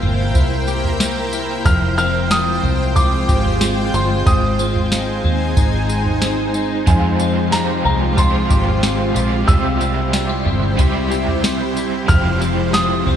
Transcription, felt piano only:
1.66 1.96 F6 loud
1.98 2.31 F6 loud
2.31 2.98 D#6 loud
2.96 3.97 D6 loud
3.94 4.28 C6 medium
4.26 5.53 D#6 medium
6.87 7.54 G#5 medium
7.52 7.84 A#5 medium
7.85 8.19 A#5 medium
8.17 9.52 C6 loud
9.48 10.09 E6 loud
12.08 12.76 F6 loud
12.73 13.16 D#6 loud

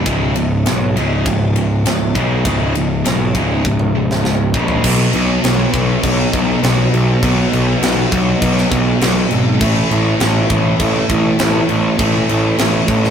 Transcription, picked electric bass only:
0.06 0.35 C#1 loud
0.35 0.64 C#1 medium
0.66 0.94 B1 medium
0.96 1.25 C#1 medium
1.26 1.83 C#1 loud
1.85 2.14 C#1 medium
2.15 2.44 B1 medium
2.45 2.74 C#1 loud
2.75 3.04 C#1 medium
3.05 3.34 B1 medium
3.35 3.63 C#1 medium
3.64 4.21 C#1 medium
4.25 4.53 C#1 medium
4.54 4.83 A#1 medium
4.84 5.05 B1 loud
5.15 5.35 B1 medium
5.44 5.65 B1 loud
5.74 5.95 B1 loud
6.03 6.24 B1 loud
6.33 6.54 B1 medium
6.63 6.84 B1 loud
6.93 7.14 B1 medium
7.23 7.44 B1 loud
7.53 7.74 B1 loud
7.82 8.03 B1 medium
8.12 8.33 B1 medium
8.42 8.63 B1 loud
8.71 8.92 B1 medium
9.02 9.23 B1 loud
9.32 9.61 G#1 medium
9.61 9.82 A1 loud
9.91 10.12 A1 loud
10.21 10.42 A1 loud
10.50 10.71 A1 medium
10.80 11.01 A1 loud
11.10 11.31 A1 loud
11.40 11.61 A1 loud
11.69 11.90 A1 medium
11.99 12.20 A1 loud
12.29 12.50 A1 loud
12.59 12.80 A1 medium
12.88 13.09 A1 medium

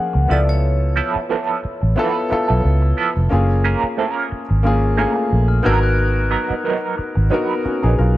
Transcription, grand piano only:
0.00 0.30 F3 medium
0.00 0.31 A#3 medium
0.00 0.32 C#4 medium
0.00 0.30 F4 medium
0.00 0.31 G#4 medium
0.00 0.32 A#4 medium
0.28 1.38 B3 medium
0.28 1.39 E4 medium
0.28 1.40 F4 medium
0.28 1.40 A4 medium
1.96 2.24 B3 medium
1.96 2.25 E4 medium
1.96 2.25 F4 medium
1.96 2.26 A4 medium
2.29 3.13 B3 medium
2.29 3.13 E4 medium
2.29 3.14 F4 medium
2.29 3.14 A4 medium
3.29 4.40 A#3 medium
3.29 4.40 C#4 medium
3.29 4.41 F4 medium
3.29 4.41 G#4 medium
4.63 4.91 A#3 medium
4.63 4.92 C#4 medium
4.63 4.92 F4 medium
4.63 4.93 G#4 medium
4.96 5.04 A3 medium
4.96 5.64 C#4 medium
4.96 5.65 F4 medium
4.96 5.66 G#4 medium
5.03 5.67 A#3 medium
5.63 6.73 B3 medium
5.63 6.74 D#4 medium
5.63 6.74 F#4 medium
5.63 6.75 A#4 loud
7.30 7.59 B3 medium
7.30 7.59 D#4 medium
7.30 7.60 F#4 medium
7.30 7.61 A#4 medium
7.65 7.83 C#4 medium
7.65 7.82 F#4 medium
7.83 7.98 D#4 medium
7.83 7.98 G#4 medium
7.98 8.16 F4 medium
7.98 8.16 A#4 medium

